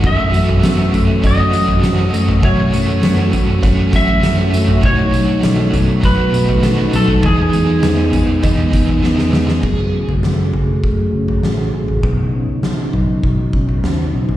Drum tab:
CC |----------------|----------------|----------------|----------------|
TB |--x-x-x-x-x-x-x-|--x-x-x-x-x-x-x-|--x-x-x-x-x-x-x-|--x-x-x-x-x-----|
SD |----o-------o---|----o-------o---|----o-------o---|----o-------oooo|
FT |o--o--o-o--o---o|o-----o-o--o---o|o-----o-o--o---o|o-----o-o--o----|
BD |o-------o-------|o-------o-o-----|o-------o-------|o-------o-o-----|

CC |x---------------|----------------|
TB |----------------|----------------|
SD |----o-------o---|----o-------o---|
FT |o--o--o-o--o---o|o-----o-o--o---o|
BD |o-------o-------|o-------o-o-----|